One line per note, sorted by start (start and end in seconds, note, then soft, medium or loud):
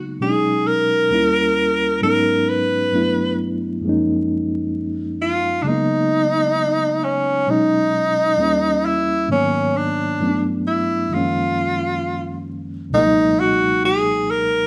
0.00 0.15 C#3 medium
0.00 0.19 F#3 soft
0.00 0.17 G#3 medium
0.00 0.18 A#3 soft
0.00 0.18 B3 soft
0.00 0.19 D#4 medium
0.20 1.11 B2 medium
0.20 1.11 F#3 soft
0.20 1.12 G#3 soft
0.20 1.12 C#4 soft
0.20 0.30 D4 soft
0.20 0.69 G#4 medium
0.30 1.16 D#4 medium
0.67 2.02 A#4 loud
1.10 2.02 D#2 medium
1.10 2.02 G3 medium
1.10 2.03 A#3 medium
1.10 2.03 C#4 soft
1.10 2.04 E4 medium
2.01 2.93 G#2 medium
2.01 2.91 F#3 soft
2.01 2.93 G#3 medium
2.01 2.93 B3 medium
2.01 2.94 C#4 soft
2.01 2.95 D#4 medium
2.01 2.50 A#4 loud
2.49 3.39 B4 medium
2.92 3.83 G2 medium
2.92 3.84 F#3 medium
2.92 3.84 A3 medium
2.92 3.85 B3 medium
2.92 3.85 D4 medium
2.92 3.85 E4 medium
3.81 5.61 F#2 medium
3.81 5.61 F3 medium
3.81 5.62 G#3 medium
3.86 5.63 A#3 medium
3.86 5.64 C#4 medium
3.86 5.65 D#4 medium
5.21 5.64 F4 medium
5.62 7.42 C#3 medium
5.62 7.43 F#3 soft
5.62 7.44 G#3 medium
5.62 5.69 D4 medium
5.67 7.45 A#3 soft
5.67 7.46 B3 medium
5.67 7.05 D#4 loud
5.67 7.46 D#4 medium
7.04 7.51 C#4 medium
7.47 8.38 B2 medium
7.47 8.38 F#3 medium
7.47 8.39 G#3 soft
7.47 8.39 C#4 medium
7.47 8.87 D#4 loud
7.51 8.40 D#4 medium
8.37 9.29 D#2 medium
8.37 9.29 E3 medium
8.37 9.30 G3 medium
8.37 9.30 A#3 medium
8.37 9.31 C#4 medium
8.85 9.30 E4 medium
9.28 10.20 G#2 medium
9.28 10.20 D#3 medium
9.28 10.20 F#3 soft
9.28 10.21 A#3 medium
9.28 10.21 B3 medium
9.28 9.78 C#4 medium
9.32 10.22 C#5 medium
9.77 10.44 D4 medium
10.19 11.11 G2 medium
10.19 11.11 E3 medium
10.19 11.11 F#3 soft
10.19 11.12 A3 medium
10.19 11.12 B3 soft
10.23 10.30 C#4 medium
10.29 11.16 D4 medium
10.67 11.15 E4 medium
11.08 12.88 F#2 medium
11.08 12.89 D#3 soft
11.08 12.90 F3 soft
11.13 12.90 G#3 medium
11.13 12.91 A#3 soft
11.13 12.92 C#4 medium
11.13 12.49 F4 medium
12.90 14.67 C#2 medium
12.90 14.67 B2 medium
12.90 13.01 F3 soft
12.94 14.67 G#3 medium
12.94 14.67 A#3 medium
12.94 13.42 D#4 loud
12.94 14.67 D#4 medium
13.00 14.67 F#3 medium
13.40 13.85 F#4 medium
13.85 14.32 G#4 loud
14.31 14.67 A#4 medium